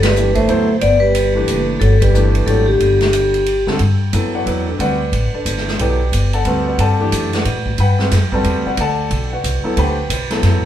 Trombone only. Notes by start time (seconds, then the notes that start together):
0.03 G3
0.35 A3
0.80 B3
1.00 G3
1.79 F#3
2.00 G3
2.46 F#3
2.67 D3